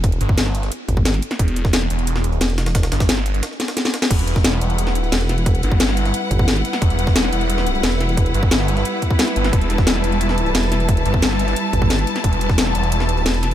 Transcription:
<<
  \new Staff \with { instrumentName = "String section" } { \time 4/4 \key e \minor \tempo 4 = 177 << { r1 | r1 | r1 | fis''1~ |
fis''1~ | fis''1~ | fis''1 | a''1~ |
a''1~ | a''1 | } \\ { r1 | r1 | r1 | <g e' b'>1~ |
<g e' b'>1~ | <g e' b'>1~ | <g e' b'>1~ | <g e' b'>1~ |
<g e' b'>1~ | <g e' b'>1 | } >> }
  \new Staff \with { instrumentName = "Detuned saw bass" } { \clef bass \time 4/4 \key e \minor r8 g,,4. r2 | e,,4. e,,4. r4 | r8 g,,4. r2 | e,,4. e,,4. r4 |
r8 g,,4. r2 | e,,4. e,,4. r4 | r8 g,,4. r4. g,,8 | e,,4. e,,4. r4 |
r8 g,,4. r2 | e,,4. e,,4. r4 | }
  \new Staff \with { instrumentName = "Wobble bass" } { \clef bass \time 4/4 \key e \minor e,,8 r2 g,,4 r8 | r2. e,,4~ | e,,8 r2. r8 | r2. e,,4~ |
e,,8 r2 g,,4 r8 | r2. e,,4~ | e,,8 r2. r8 | r2. e,,4~ |
e,,8 r2 g,,4 r8 | r2. e,,4 | }
  \new DrumStaff \with { instrumentName = "Drums" } \drummode { \time 4/4 <hh bd>16 hh16 hh16 bd16 <hh sn>16 sn16 hh16 <hh sn>16 hh8 <hh bd>16 bd16 <hh sn>16 <hh sn>16 hh16 <hh sn>16 | <hh bd>16 hh16 hh16 <bd sn>16 <hh sn>16 sn16 hh16 hh16 hh16 sn16 hh16 hh16 <hh sn>16 hh16 <hh sn>16 <hh sn>16 | <hh bd sn>16 <hh sn>16 <hh sn>16 <hh bd sn>16 <hh sn>16 sn16 hh16 hh16 <hh sn>16 sn16 <hh sn>16 <hh sn>16 <hh sn>16 <hh sn>16 <hh sn>16 <hh sn>16 | <cymc hh bd>16 hh16 hh16 <bd sn>16 <hh sn>16 sn16 hh16 hh16 hh16 sn16 hh16 hh16 <hh sn>16 hh16 <hh sn>16 hh16 |
<hh bd>16 hh16 hh16 bd16 <hh sn>16 sn16 hh16 <hh sn>16 hh8 <hh bd>16 bd16 <hh sn>16 <hh sn>16 hh16 <hh sn>16 | <hh bd>16 hh16 hh16 <bd sn>16 <hh sn>16 sn16 hh16 hh16 hh16 sn16 hh16 hh16 <hh sn>16 hh16 <hh sn>16 hh16 | <hh bd>16 hh16 hh16 bd16 <hh sn>16 sn16 hh16 <hh sn>16 hh8 <hh bd>16 bd16 <hh sn>16 <hh sn>16 hh16 <hh sn>16 | <hh bd>16 hh16 hh16 <bd sn>16 <hh sn>16 sn16 hh16 hh16 hh16 sn16 hh16 hh16 <hh sn>16 hh16 <hh sn>16 hh16 |
<hh bd>16 hh16 hh16 bd16 <hh sn>16 sn16 hh16 <hh sn>16 hh8 <hh bd>16 bd16 <hh sn>16 <hh sn>16 hh16 <hh sn>16 | <hh bd>16 hh16 hh16 <bd sn>16 <hh sn>16 sn16 hh16 hh16 hh16 sn16 hh16 hh16 <hh sn>16 hh16 <hh sn>8 | }
>>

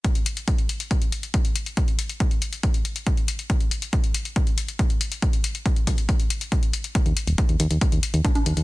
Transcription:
<<
  \new Staff \with { instrumentName = "FM bass" } { \clef bass \time 4/4 \key ees \lydian \tempo 4 = 139 r1 | r1 | r1 | r1 |
r16 ees,16 r16 ees,,16 r16 ees,16 ees,16 ees,16 r16 ees,16 r16 ees,16 r8 ees,16 ees,16 | }
  \new DrumStaff \with { instrumentName = "Drums" } \drummode { \time 4/4 <hh bd>16 hh16 hh16 hh16 <hh bd>16 hh16 hh16 hh16 <hh bd>16 hh16 hh16 hh16 <hh bd>16 hh16 hh16 hh16 | <hh bd>16 hh16 hh16 hh16 <hh bd>16 hh16 hh16 hh16 <hh bd>16 hh16 hh16 hh16 <hh bd>16 hh16 hh16 hh16 | <hh bd>16 hh16 hh16 hh16 <hh bd>16 hh16 hh16 hh16 <hh bd>16 hh16 hh16 hh16 <hh bd>16 hh16 hh16 hh16 | <hh bd>16 hh16 hh16 hh16 <hh bd>16 hh16 <hh bd>16 hh16 <hh bd>16 hh16 hh16 hh16 <hh bd>16 hh16 hh16 hh16 |
<hh bd>16 hh16 hh16 hh16 <hh bd>16 hh16 hh16 hh16 <hh bd>16 hh16 hh16 hh16 <cgho hh bd>16 <cgho hh>16 hh16 hh16 | }
>>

